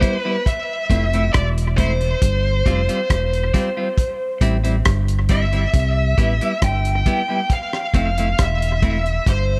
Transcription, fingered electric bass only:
0, 0, Header, 1, 2, 480
1, 0, Start_track
1, 0, Tempo, 879765
1, 1212, Time_signature, 4, 2, 24, 8
1, 5235, End_track
2, 0, Start_track
2, 0, Title_t, "Fingered electric bass"
2, 0, Program_c, 0, 33
2, 494, Note_on_c, 0, 29, 97
2, 707, Note_off_c, 0, 29, 0
2, 739, Note_on_c, 0, 28, 96
2, 1165, Note_off_c, 0, 28, 0
2, 1215, Note_on_c, 0, 31, 110
2, 1428, Note_off_c, 0, 31, 0
2, 1455, Note_on_c, 0, 29, 94
2, 1566, Note_off_c, 0, 29, 0
2, 1696, Note_on_c, 0, 28, 90
2, 1909, Note_off_c, 0, 28, 0
2, 2409, Note_on_c, 0, 33, 91
2, 2625, Note_off_c, 0, 33, 0
2, 2657, Note_on_c, 0, 31, 100
2, 3084, Note_off_c, 0, 31, 0
2, 3136, Note_on_c, 0, 36, 116
2, 3349, Note_off_c, 0, 36, 0
2, 3375, Note_on_c, 0, 33, 92
2, 3486, Note_off_c, 0, 33, 0
2, 3617, Note_on_c, 0, 31, 93
2, 3829, Note_off_c, 0, 31, 0
2, 4335, Note_on_c, 0, 29, 94
2, 4549, Note_off_c, 0, 29, 0
2, 4582, Note_on_c, 0, 28, 93
2, 5008, Note_off_c, 0, 28, 0
2, 5058, Note_on_c, 0, 31, 101
2, 5235, Note_off_c, 0, 31, 0
2, 5235, End_track
0, 0, End_of_file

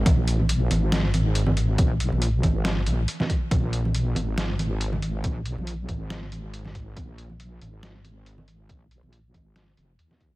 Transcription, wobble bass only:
0, 0, Header, 1, 2, 480
1, 0, Start_track
1, 0, Tempo, 431655
1, 66, Time_signature, 4, 2, 24, 8
1, 11518, End_track
2, 0, Start_track
2, 0, Title_t, "Wobble bass"
2, 0, Program_c, 0, 39
2, 66, Note_on_c, 0, 34, 96
2, 772, Note_off_c, 0, 34, 0
2, 784, Note_on_c, 0, 32, 88
2, 1971, Note_off_c, 0, 32, 0
2, 1986, Note_on_c, 0, 34, 100
2, 2342, Note_off_c, 0, 34, 0
2, 2358, Note_on_c, 0, 34, 95
2, 2692, Note_off_c, 0, 34, 0
2, 2706, Note_on_c, 0, 32, 85
2, 3185, Note_on_c, 0, 34, 96
2, 3202, Note_off_c, 0, 32, 0
2, 3408, Note_off_c, 0, 34, 0
2, 3905, Note_on_c, 0, 34, 95
2, 4612, Note_off_c, 0, 34, 0
2, 4628, Note_on_c, 0, 32, 83
2, 5813, Note_off_c, 0, 32, 0
2, 5827, Note_on_c, 0, 34, 100
2, 6182, Note_off_c, 0, 34, 0
2, 6197, Note_on_c, 0, 34, 96
2, 6531, Note_off_c, 0, 34, 0
2, 6546, Note_on_c, 0, 32, 84
2, 7732, Note_off_c, 0, 32, 0
2, 7745, Note_on_c, 0, 34, 100
2, 8452, Note_off_c, 0, 34, 0
2, 8463, Note_on_c, 0, 32, 88
2, 9651, Note_off_c, 0, 32, 0
2, 9667, Note_on_c, 0, 34, 90
2, 10022, Note_off_c, 0, 34, 0
2, 10040, Note_on_c, 0, 34, 87
2, 10372, Note_off_c, 0, 34, 0
2, 10387, Note_on_c, 0, 32, 87
2, 10862, Note_off_c, 0, 32, 0
2, 10868, Note_on_c, 0, 29, 89
2, 11090, Note_off_c, 0, 29, 0
2, 11106, Note_on_c, 0, 39, 99
2, 11518, Note_off_c, 0, 39, 0
2, 11518, End_track
0, 0, End_of_file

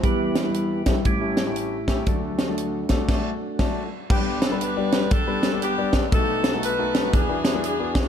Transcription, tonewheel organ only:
0, 0, Header, 1, 2, 480
1, 0, Start_track
1, 0, Key_signature, 1, "major"
1, 0, Tempo, 506757
1, 33, Time_signature, 4, 2, 24, 8
1, 7655, End_track
2, 0, Start_track
2, 0, Title_t, "Tonewheel organ"
2, 0, Program_c, 0, 16
2, 34, Note_on_c, 0, 52, 57
2, 39, Note_on_c, 0, 55, 53
2, 44, Note_on_c, 0, 59, 59
2, 44, Note_on_c, 0, 64, 68
2, 46, Note_on_c, 0, 71, 98
2, 47, Note_on_c, 0, 67, 72
2, 780, Note_off_c, 0, 52, 0
2, 783, Note_off_c, 0, 55, 0
2, 785, Note_off_c, 0, 59, 0
2, 829, Note_on_c, 0, 69, 84
2, 847, Note_off_c, 0, 71, 0
2, 908, Note_off_c, 0, 69, 0
2, 965, Note_off_c, 0, 64, 0
2, 966, Note_off_c, 0, 67, 0
2, 998, Note_on_c, 0, 45, 55
2, 1004, Note_on_c, 0, 55, 49
2, 1009, Note_on_c, 0, 61, 62
2, 1009, Note_on_c, 0, 64, 58
2, 1010, Note_on_c, 0, 67, 82
2, 1353, Note_off_c, 0, 45, 0
2, 1356, Note_off_c, 0, 55, 0
2, 1360, Note_off_c, 0, 61, 0
2, 1929, Note_off_c, 0, 64, 0
2, 1956, Note_on_c, 0, 50, 55
2, 1962, Note_on_c, 0, 54, 51
2, 1966, Note_on_c, 0, 62, 52
2, 1967, Note_on_c, 0, 57, 58
2, 1969, Note_on_c, 0, 66, 77
2, 1996, Note_off_c, 0, 67, 0
2, 2704, Note_off_c, 0, 50, 0
2, 2707, Note_off_c, 0, 54, 0
2, 3670, Note_off_c, 0, 62, 0
2, 3672, Note_off_c, 0, 57, 0
2, 3672, Note_off_c, 0, 66, 0
2, 7655, End_track
0, 0, End_of_file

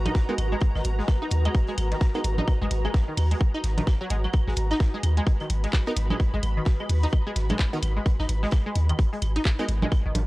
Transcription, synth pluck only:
0, 0, Header, 1, 2, 480
1, 0, Start_track
1, 0, Key_signature, 5, "minor"
1, 0, Tempo, 465116
1, 635, Time_signature, 4, 2, 24, 8
1, 10598, End_track
2, 0, Start_track
2, 0, Title_t, "Synth pluck"
2, 0, Program_c, 0, 84
2, 58, Note_on_c, 0, 63, 100
2, 88, Note_off_c, 0, 63, 0
2, 298, Note_on_c, 0, 56, 100
2, 328, Note_off_c, 0, 56, 0
2, 538, Note_on_c, 0, 56, 102
2, 568, Note_off_c, 0, 56, 0
2, 779, Note_on_c, 0, 51, 76
2, 824, Note_off_c, 0, 51, 0
2, 1019, Note_on_c, 0, 56, 78
2, 1064, Note_off_c, 0, 56, 0
2, 1259, Note_on_c, 0, 63, 98
2, 1289, Note_off_c, 0, 63, 0
2, 1498, Note_on_c, 0, 56, 101
2, 1528, Note_off_c, 0, 56, 0
2, 1738, Note_on_c, 0, 56, 102
2, 1768, Note_off_c, 0, 56, 0
2, 1978, Note_on_c, 0, 51, 76
2, 2023, Note_off_c, 0, 51, 0
2, 2218, Note_on_c, 0, 56, 79
2, 2264, Note_off_c, 0, 56, 0
2, 2458, Note_on_c, 0, 63, 99
2, 2488, Note_off_c, 0, 63, 0
2, 2699, Note_on_c, 0, 56, 102
2, 2729, Note_off_c, 0, 56, 0
2, 2937, Note_on_c, 0, 56, 102
2, 2968, Note_off_c, 0, 56, 0
2, 3177, Note_on_c, 0, 51, 71
2, 3223, Note_off_c, 0, 51, 0
2, 3418, Note_on_c, 0, 56, 76
2, 3463, Note_off_c, 0, 56, 0
2, 3658, Note_on_c, 0, 63, 102
2, 3688, Note_off_c, 0, 63, 0
2, 3897, Note_on_c, 0, 51, 76
2, 3928, Note_off_c, 0, 51, 0
2, 4138, Note_on_c, 0, 54, 101
2, 4183, Note_off_c, 0, 54, 0
2, 4235, Note_on_c, 0, 56, 76
2, 4302, Note_off_c, 0, 56, 0
2, 4378, Note_on_c, 0, 54, 73
2, 4408, Note_off_c, 0, 54, 0
2, 4619, Note_on_c, 0, 56, 77
2, 4664, Note_off_c, 0, 56, 0
2, 4859, Note_on_c, 0, 63, 104
2, 4889, Note_off_c, 0, 63, 0
2, 5099, Note_on_c, 0, 56, 95
2, 5129, Note_off_c, 0, 56, 0
2, 5338, Note_on_c, 0, 56, 104
2, 5368, Note_off_c, 0, 56, 0
2, 5579, Note_on_c, 0, 51, 75
2, 5624, Note_off_c, 0, 51, 0
2, 5819, Note_on_c, 0, 56, 76
2, 5864, Note_off_c, 0, 56, 0
2, 6058, Note_on_c, 0, 63, 102
2, 6088, Note_off_c, 0, 63, 0
2, 6298, Note_on_c, 0, 56, 103
2, 6328, Note_off_c, 0, 56, 0
2, 6538, Note_on_c, 0, 56, 99
2, 6568, Note_off_c, 0, 56, 0
2, 6778, Note_on_c, 0, 51, 76
2, 6824, Note_off_c, 0, 51, 0
2, 7018, Note_on_c, 0, 56, 75
2, 7063, Note_off_c, 0, 56, 0
2, 7257, Note_on_c, 0, 63, 98
2, 7288, Note_off_c, 0, 63, 0
2, 7498, Note_on_c, 0, 56, 101
2, 7528, Note_off_c, 0, 56, 0
2, 7738, Note_on_c, 0, 56, 103
2, 7768, Note_off_c, 0, 56, 0
2, 7978, Note_on_c, 0, 51, 78
2, 8023, Note_off_c, 0, 51, 0
2, 8218, Note_on_c, 0, 56, 76
2, 8263, Note_off_c, 0, 56, 0
2, 8458, Note_on_c, 0, 63, 103
2, 8488, Note_off_c, 0, 63, 0
2, 8698, Note_on_c, 0, 56, 103
2, 8728, Note_off_c, 0, 56, 0
2, 8938, Note_on_c, 0, 56, 99
2, 8968, Note_off_c, 0, 56, 0
2, 9178, Note_on_c, 0, 51, 74
2, 9223, Note_off_c, 0, 51, 0
2, 9418, Note_on_c, 0, 56, 80
2, 9463, Note_off_c, 0, 56, 0
2, 9658, Note_on_c, 0, 63, 102
2, 9688, Note_off_c, 0, 63, 0
2, 9897, Note_on_c, 0, 56, 103
2, 9928, Note_off_c, 0, 56, 0
2, 10137, Note_on_c, 0, 56, 103
2, 10168, Note_off_c, 0, 56, 0
2, 10377, Note_on_c, 0, 51, 78
2, 10423, Note_off_c, 0, 51, 0
2, 10598, End_track
0, 0, End_of_file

